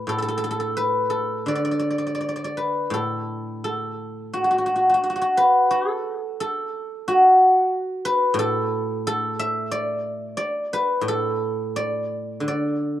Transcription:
0.00 0.33 F#4 medium
0.00 0.76 B4 medium
0.07 1.46 A2 soft
0.07 0.18 A4 medium
0.18 0.22 A4 soft
0.18 0.28 A4 medium
0.28 0.37 A4 medium
0.38 0.43 A4 medium
0.44 0.50 A4 medium
0.51 0.59 A4 medium
0.60 1.09 A4 medium
0.77 2.57 B4 medium
1.10 2.93 A4 medium
1.46 3.63 D3 soft
1.46 1.55 D5 medium
1.55 1.64 D5 soft
1.65 1.71 D5 soft
1.71 1.79 D5 soft
1.79 1.90 D5 soft
1.90 1.98 D5 soft
1.98 2.06 D5 soft
2.07 2.14 D5 soft
2.15 2.20 D5 soft
2.21 2.28 D5 soft
2.29 2.35 D5 soft
2.36 2.44 D5 soft
2.44 4.29 D5 medium
2.57 4.62 B4 medium
2.90 4.99 A2 soft
2.90 3.64 A4 medium
3.64 5.70 A4 medium
4.34 4.44 F#4 medium
4.44 4.50 F#4 soft
4.51 4.58 F#4 soft
4.58 4.66 F#4 soft
4.66 4.75 F#4 soft
4.76 4.89 F#4 soft
4.90 4.94 F#4 soft
4.94 5.03 F#4 soft
5.04 5.09 F#4 soft
5.10 5.15 F#4 soft
5.16 5.21 F#4 soft
5.22 7.07 F#4 medium
5.37 7.42 B4 medium
5.71 6.40 A4 medium
6.40 8.39 A4 medium
7.08 9.51 F#4 medium
8.05 10.10 B4 medium
8.34 10.35 A2 medium
8.39 9.07 A4 medium
9.07 11.08 A4 medium
9.39 11.12 E5 medium
9.71 10.37 D5 medium
10.37 11.76 D5 medium
10.73 12.78 B4 medium
11.01 12.42 A2 medium
11.08 13.00 A4 medium
11.76 12.47 D5 medium
12.40 13.00 D3 soft
12.48 13.00 D5 medium

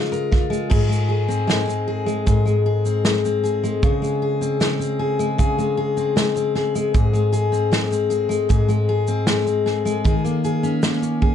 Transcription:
0.00 0.80 C#3 medium
0.00 0.50 G#3 medium
0.00 0.31 F4 medium
0.00 0.11 A#4 medium
0.12 0.70 A#4 medium
0.12 shaker medium
0.31 1.28 F4 medium
0.31 kick medium
0.31 snare soft
0.50 0.89 G#3 medium
0.50 shaker medium
0.70 2.25 G#2 medium
0.70 1.08 G#4 medium
0.70 kick loud
0.70 crash loud
0.89 1.47 G#3 medium
0.89 shaker medium
1.09 1.87 G#4 medium
1.28 1.67 C4 medium
1.28 shaker medium
1.47 2.06 G#3 medium
1.47 snare loud
1.47 shaker medium
1.68 2.85 C4 medium
1.68 shaker medium
1.88 2.27 G#4 medium
2.06 2.45 G#3 medium
2.06 shaker soft
2.26 3.90 G#2 medium
2.26 2.65 G#4 medium
2.26 kick medium
2.26 shaker medium
2.45 3.05 G#3 medium
2.45 shaker soft
2.66 3.43 G#4 medium
2.85 3.25 C4 medium
2.85 shaker medium
3.05 3.63 G#3 medium
3.05 snare loud
3.05 shaker medium
3.25 4.41 C4 medium
3.25 shaker medium
3.44 3.84 G#4 medium
3.44 shaker medium
3.63 4.02 G#3 medium
3.63 shaker medium
3.83 5.37 C#3 medium
3.83 4.22 G#4 medium
3.83 kick loud
3.83 shaker medium
4.02 4.60 G#3 medium
4.02 shaker soft
4.22 4.99 G#4 medium
4.41 4.79 C4 medium
4.41 shaker medium
4.60 5.19 G#3 medium
4.60 snare loud
4.60 shaker medium
4.79 5.97 C4 medium
4.79 shaker medium
4.99 5.39 G#4 medium
5.19 5.58 G#3 medium
5.19 shaker soft
5.38 7.02 C#3 medium
5.38 5.77 G#4 medium
5.38 kick loud
5.38 shaker medium
5.58 6.15 G#3 medium
5.58 shaker soft
5.77 6.55 G#4 medium
5.97 6.35 C4 medium
5.97 shaker medium
6.16 6.75 G#3 medium
6.16 snare loud
6.16 shaker medium
6.36 7.52 C4 medium
6.36 shaker medium
6.55 6.94 G#4 medium
6.55 snare soft
6.75 7.13 G#3 medium
6.75 shaker medium
6.94 8.48 G#2 medium
6.94 7.32 G#4 medium
6.94 kick loud
6.94 shaker medium
7.13 7.71 G#3 medium
7.13 shaker medium
7.33 8.10 G#4 medium
7.33 shaker medium
7.52 7.90 C4 medium
7.52 shaker medium
7.72 8.29 G#3 medium
7.72 snare loud
7.72 shaker medium
7.91 9.07 C4 medium
7.91 shaker medium
8.10 8.49 G#4 medium
8.10 shaker medium
8.29 8.68 G#3 medium
8.29 shaker medium
8.49 10.13 G#2 medium
8.49 8.88 G#4 medium
8.49 kick medium
8.49 shaker medium
8.68 9.27 G#3 medium
8.68 shaker soft
8.89 9.66 G#4 medium
9.07 9.45 C4 medium
9.07 shaker medium
9.27 9.85 G#3 medium
9.27 snare loud
9.27 shaker medium
9.47 10.13 C4 medium
9.47 shaker soft
9.66 10.05 G#4 medium
9.66 snare soft
9.85 10.24 G#3 medium
9.85 shaker medium
10.04 11.35 D#3 medium
10.04 10.44 G#4 medium
10.04 kick loud
10.04 shaker medium
10.24 10.82 A#3 medium
10.24 shaker medium
10.44 11.21 G#4 medium
10.44 shaker medium
10.63 11.01 C#4 medium
10.63 shaker medium
10.83 11.35 A#3 medium
10.83 snare loud
10.83 shaker medium
11.02 11.35 C#4 medium
11.02 shaker medium
11.22 11.35 G#4 medium
11.22 kick medium

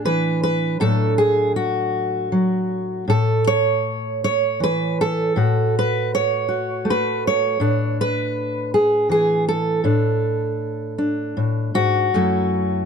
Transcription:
0.00 0.75 A2 medium
0.00 0.76 D4 soft
0.05 0.80 E3 medium
0.05 0.42 B4 loud
0.43 0.80 B4 medium
0.80 3.07 A2 medium
0.80 2.31 F#3 soft
0.80 5.36 A3 soft
0.80 3.05 D4 soft
0.80 1.18 A4 medium
1.18 1.56 G#4 medium
1.56 3.09 F#4 medium
2.32 3.04 F#3 medium
3.08 5.31 A2 medium
3.08 3.47 A4 medium
3.47 4.23 C#5 loud
4.24 4.61 C#5 medium
4.60 5.35 E3 medium
4.60 5.00 B4 loud
5.01 5.75 A4 medium
5.36 7.56 A2 medium
5.36 6.47 F#4 soft
5.79 6.13 B4 medium
6.15 6.88 C#5 medium
6.48 7.56 F#4 soft
6.85 7.55 A3 medium
6.90 7.25 B4 medium
7.27 8.00 C#5 medium
7.60 9.79 A2 medium
7.60 9.79 D4 soft
8.01 8.73 B4 loud
8.74 9.10 G#4 medium
9.09 9.84 E3 medium
9.09 9.47 G#4 medium
9.48 11.75 A4 medium
9.84 11.36 A2 medium
9.84 10.97 D4 soft
10.98 12.09 D4 soft
11.37 11.74 A2 medium
11.74 12.13 G#2 medium
11.74 12.85 F#4 medium
12.14 12.85 F#2 medium
12.14 12.85 F#3 soft
12.14 12.85 A3 soft
12.14 12.85 E4 soft

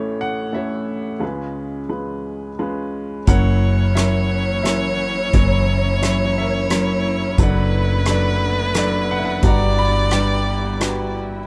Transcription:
0.00 1.19 A1 medium
0.00 1.19 A2 medium
0.00 0.53 A3 medium
0.00 0.53 C#4 medium
0.00 0.53 E4 medium
0.00 0.56 C#5 medium
0.21 0.52 F#5 medium
0.53 1.12 A3 soft
0.53 1.12 C#4 soft
0.53 1.12 E4 soft
0.53 0.55 A4 medium
0.53 1.19 A4 soft
0.53 1.19 C#5 medium
0.53 1.25 E5 medium
1.20 3.23 C#2 soft
1.20 3.23 C#3 soft
1.20 1.80 G#3 medium
1.20 1.80 C#4 medium
1.20 1.25 F4 medium
1.20 1.22 B4 medium
1.24 1.88 F4 soft
1.24 2.57 G#4 soft
1.24 1.88 B4 medium
1.89 2.49 G#3 soft
1.89 2.49 C#4 soft
1.89 2.49 F4 soft
1.89 2.49 B4 medium
2.59 3.18 G#3 medium
2.59 3.19 C#4 medium
2.59 3.19 F4 medium
2.59 3.19 B4 medium
3.27 5.29 F#1 medium
3.27 5.29 F#2 medium
3.27 7.34 E3 medium
3.27 3.87 F#3 medium
3.27 7.34 A#3 medium
3.27 3.87 C#4 medium
3.27 7.34 C#4 medium
3.27 3.87 E4 medium
3.27 11.47 E4 medium
3.27 3.87 A#4 medium
3.27 7.40 C#5 medium
3.27 3.95 C#5 medium
3.27 3.99 F#5 medium
3.27 kick medium
3.27 closed hi-hat soft
3.95 4.55 F#3 medium
3.95 4.55 C#4 medium
3.95 4.55 E4 medium
3.95 4.63 A#4 medium
3.95 4.56 C#5 medium
3.95 4.62 E5 medium
3.95 cross-stick medium
3.95 closed hi-hat soft
4.63 5.23 F#3 medium
4.63 5.24 C#4 medium
4.63 5.24 E4 medium
4.63 5.24 A#4 medium
4.63 5.32 C#5 medium
4.63 5.35 E5 medium
4.63 cross-stick medium
4.63 closed hi-hat soft
5.33 7.35 F#1 medium
5.33 7.35 F#2 medium
5.33 5.93 F#3 medium
5.33 5.93 C#4 medium
5.33 5.36 E4 medium
5.33 5.36 A#4 medium
5.33 6.01 C#5 medium
5.33 kick medium
5.33 closed hi-hat soft
5.37 6.01 E4 medium
5.37 6.34 A#4 medium
6.02 6.61 F#3 medium
6.02 6.61 C#4 medium
6.02 6.61 E4 soft
6.02 6.39 C#5 medium
6.02 6.36 E5 medium
6.02 cross-stick medium
6.02 closed hi-hat soft
6.38 6.70 A#4 medium
6.38 7.37 C#5 medium
6.38 7.01 E5 medium
6.70 7.29 F#3 medium
6.70 7.29 C#4 medium
6.70 7.29 E4 medium
6.70 7.29 A#4 medium
6.70 cross-stick medium
6.70 closed hi-hat soft
7.38 9.39 F#1 medium
7.38 9.40 F#1 medium
7.38 9.40 F#2 medium
7.38 11.46 D3 medium
7.38 7.97 F#3 medium
7.38 9.42 A3 medium
7.38 11.46 B3 medium
7.38 7.98 D4 medium
7.38 7.42 A4 medium
7.38 9.45 B4 medium
7.38 7.98 B4 medium
7.38 kick medium
7.38 closed hi-hat soft
7.43 8.05 A4 medium
7.43 8.09 D5 medium
7.43 8.05 F#5 medium
8.06 8.65 F#3 medium
8.06 8.65 D4 medium
8.06 8.10 A4 medium
8.06 8.09 B4 medium
8.06 cross-stick medium
8.06 closed hi-hat soft
8.11 8.74 A4 soft
8.11 8.74 B4 soft
8.11 8.77 D5 medium
8.74 9.34 F#3 medium
8.74 9.34 D4 medium
8.74 9.34 A4 medium
8.74 9.34 B4 medium
8.74 9.12 D5 medium
8.74 cross-stick medium
8.74 closed hi-hat soft
9.11 9.17 F#5 medium
9.19 9.25 E5 medium
9.25 9.43 F#5 medium
9.43 11.45 G1 medium
9.43 11.46 G1 medium
9.43 11.46 G2 medium
9.43 11.47 G3 medium
9.43 10.02 D4 medium
9.43 10.02 F#4 medium
9.43 10.03 G4 medium
9.43 10.03 B4 medium
9.43 11.15 D5 medium
9.43 9.80 A#5 medium
9.43 kick medium
9.43 closed hi-hat medium
9.48 10.13 D5 medium
9.48 10.44 F#5 medium
9.79 10.13 B5 medium
10.11 10.71 G3 medium
10.11 10.71 D4 medium
10.11 10.71 G4 medium
10.11 10.71 B4 medium
10.11 11.12 D5 medium
10.11 10.77 G5 medium
10.11 cross-stick medium
10.11 closed hi-hat soft
10.80 11.40 D4 medium
10.80 11.40 F#4 medium
10.80 11.40 G4 medium
10.80 11.40 B4 medium
10.80 cross-stick medium
10.80 closed hi-hat soft

